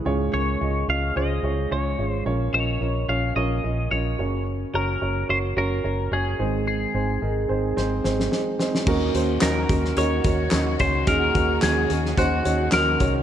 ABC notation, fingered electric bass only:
X:1
M:4/4
L:1/8
Q:"Swing 16ths" 1/4=109
K:Ebdor
V:1 name="Fingered electric bass" clef=bass
D,, D,, D,, D,, D,, D,, D,, A,,, | B,,, B,,, B,,, B,,, B,,, B,,, B,,, G,,,- | G,,, G,,, G,,, G,,, G,,, G,,, G,,, A,,,- | A,,, A,,, A,,, A,,, A,,, A,,, z2 |
E,, E,, E,, E,, E,, E,, E,, D,, | E,, E,, E,, E,, E,, E,, E,, C,, |]